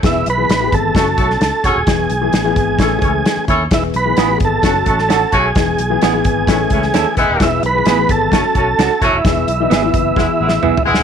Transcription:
<<
  \new Staff \with { instrumentName = "Tonewheel organ" } { \time 4/4 \key e \major \tempo 4 = 130 e'8 b'4 a'2 gis'8~ | gis'2.~ gis'8 r8 | e'8 b'4 a'2 gis'8~ | gis'2.~ gis'8 r8 |
e'8 b'4 a'2 e'8~ | e'2.~ e'8 r8 | }
  \new Staff \with { instrumentName = "Clean electric guitar" } { \time 4/4 \key e \major r1 | r1 | r4 <b e' gis'>8 r4. <cis' fis' a'>8 r8 | r4 <b e' gis'>8 r4. <cis' e' a'>8 r8 |
r4 <b e' gis'>8 r4. <cis' fis' a'>8 r8 | r4 <b e' gis'>8 r4. <b e' gis'>8 r8 | }
  \new Staff \with { instrumentName = "Horn section" } { \time 4/4 \key e \major r2 <a cis' fis' a'>16 r16 <a cis' fis' a'>16 r8. <cis' fis' a' cis''>8 | r2 <cis' e' a' cis''>16 r16 <cis' e' a' cis''>16 r8. <cis' e' a' cis''>8 | r2 <a cis' fis' a'>16 r16 <a cis' fis' a'>16 r8. <fis a cis' fis'>8 | r2 <e a cis' e'>16 r16 <e a cis' e'>16 r8. <e gis b e'>8~ |
<e gis b e'>16 r4. r16 <fis a cis' fis'>16 r16 <fis a cis' fis'>16 r8. <fis a cis' fis'>8 | r2 <gis b e' gis'>16 r16 <gis b e' gis'>16 r8. <gis b e' gis'>8 | }
  \new Staff \with { instrumentName = "Upright piano" } { \time 4/4 \key e \major <e b gis'>8 r16 <e b gis'>16 r16 <e b g' gis'>8. <fis cis' gis' a'>4. r8 | <e b gis'>8 r16 <e b gis'>16 r16 <e b gis'>8. <e a cis'>4. r8 | <e b gis'>8 r16 <e b gis'>16 r16 <e b g' gis'>8. <fis cis' a'>4. r8 | <e b gis'>8 r16 <e b gis'>16 r16 <e b gis'>8. <e a cis'>4. r8 |
<e b gis'>8 r16 <e b gis'>16 r16 <e b gis'>8. <fis cis' a'>4. r8 | <e b gis'>8 r16 <e b dis'>16 r16 <e b e'>8. <e b gis'>4. r8 | }
  \new Staff \with { instrumentName = "Fingered electric bass" } { \clef bass \time 4/4 \key e \major e,,8 b,,8 a,,8 gis,,8 fis,,8 b,,8 cis,16 r16 e,,16 dis,,16 | e,,8 b,,8 a,,8 gis,,8 a,,8 cis,8 r8 dis,8 | e,,8 b,,8 a,,8 gis,,8 fis,,8 a,,4 b,,8 | e,,8 b,,8 a,,8 gis,,8 a,,8 cis,8 dis,16 r16 e,,16 dis,,16 |
e,,8 b,,8 a,,8 gis,,8 fis,,16 r16 b,,8 cis,16 r16 e,,16 dis,,16 | e,,8 b,,8 gis,,8 fis,,8 e,,16 r16 a,,8 b,,16 r16 e,,16 dis,,16 | }
  \new DrumStaff \with { instrumentName = "Drums" } \drummode { \time 4/4 <hh bd sn>8 hh8 <hh sn>8 <hh bd>8 <hh bd sn>8 <hh bd>16 sn16 <hh sn>8 <hh bd>8 | <hh bd sn>8 hh8 <hh sn>8 <hh bd>8 <hh bd sn>8 <hh bd>8 <hh sn>8 <hh bd>8 | <hh bd sn>8 hh8 <hh sn>8 <hh bd>8 <hh bd sn>8 <hh bd>16 sn16 <hh sn>8 <hh bd>8 | <hh bd sn>8 hh8 <hh sn>8 <hh bd>8 <hh bd sn>8 <hh bd>16 sn16 <hh sn>8 <hh bd>8 |
<hh bd sn>8 hh8 <hh sn>8 <hh bd>8 <hh bd sn>8 <hh bd>8 <hh sn>8 <hh bd>8 | <hh bd sn>8 hh8 <hh sn>8 <hh bd>8 \tuplet 3/2 { <bd sn>8 r8 sn8 toml8 tomfh8 sn8 } | }
>>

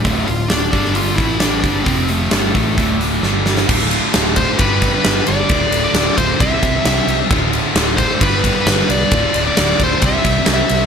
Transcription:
<<
  \new Staff \with { instrumentName = "Lead electric guitar" } { \time 4/4 \key d \minor \tempo 4 = 133 a8 f'8 d'8 d'8 f'8 e'8 d'8 d'8 | c'8 a2 r4. | \key d \dorian r4. c''8 b'8. b'8. d''8~ | d''8. d''8. c''8 e''4 e''8. r16 |
r4. c''8 b'8. b'8. d''8~ | d''8. d''8. c''8 e''4 e''8. r16 | }
  \new Staff \with { instrumentName = "Distorted electric guitar" } { \clef bass \time 4/4 \key d \minor <d, a, d>8 <d, a,>8 <d, a,>8 <g, d g>4 <a, e a>4 <g, d g>8 | <f, c f>4 <g, d g>8 <a, e a>8 <d, a, d>4 <g, d g>4 | \key d \dorian <d, a, d a f'>2 <g, d g b d' g'>2 | <d, a, d a f'>2 <c g c' e' g' c''>2 |
<d, a, d a f'>2 <g, d g b d' g'>2 | <d, a, d a f'>2 <c g c' e' g' c''>2 | }
  \new Staff \with { instrumentName = "Distorted electric guitar" } { \clef bass \time 4/4 \key d \minor <d, a, d>8 <d, a,>8 <d, a,>8 <g, d g>4 <a, e a>4 <g, d g>8 | <f, c f>4 <g, d g>8 <a, e a>8 <d, a, d>4 <g, d g>4 | \key d \dorian <d, a, d>2 <g, d g>2 | <d, a, d>2 <c g c'>2 |
<d, a, d>2 <g, d g>2 | <d, a, d>2 <c g c'>2 | }
  \new Staff \with { instrumentName = "Overdriven electric guitar" } { \clef bass \time 4/4 \key d \minor <d, a, d>8 <d, a,>8 <d, a,>8 <g, d g>4 <a, e a>4 <g, d g>8 | <f, c f>4 <g, d g>8 <a, e a>8 <d, a, d>4 <g, d g>4 | \key d \dorian <d, a, d>2 <g, d g>2 | <d, a, d>2 <c g c'>2 |
<d, a, d>2 <g, d g>2 | <d, a, d>2 <c g c'>2 | }
  \new Staff \with { instrumentName = "Fingered electric bass" } { \clef bass \time 4/4 \key d \minor d,,8 d,,8 d,,8 g,,4 a,,4 g,,8 | f,,4 g,,8 a,,8 d,,4 g,,4 | \key d \dorian d,,4 d,,4 g,,4 g,,8 g,,8 | d,,8 d,,8 d,,8 d,,8 c,8 c,8 c,8 c,8 |
d,,4 d,,4 g,,4 g,,8 c,8 | d,,8 d,,8 d,,8 d,,8 c,8 c,8 c,8 c,8 | }
  \new DrumStaff \with { instrumentName = "Drums" } \drummode { \time 4/4 <hho bd>8 hho8 <hho sn>8 <hho bd>16 sn16 hho8 <hho bd sn>8 <hho sn>8 <hho bd>8 | <hho bd>8 hho8 <hho sn>8 <hho bd>8 <hho bd>8 <hho sn>8 sn8 sn16 sn16 | <cymc bd>8 cymr8 <cymr sn>8 <bd cymr>8 <bd cymr>8 <bd cymr>8 <cymr sn>8 cymr8 | <bd cymr>8 cymr8 <cymr sn>8 <bd cymr>8 <bd cymr>8 <bd cymr>8 <cymr sn>8 cymr8 |
<bd cymr>8 cymr8 <cymr sn>8 <bd cymr>8 <bd cymr>8 <bd cymr>8 <cymr sn>8 cymr8 | <bd cymr>8 cymr8 <cymr sn>8 <bd cymr>8 <bd cymr>8 <bd cymr>8 <cymr sn>8 cymr8 | }
>>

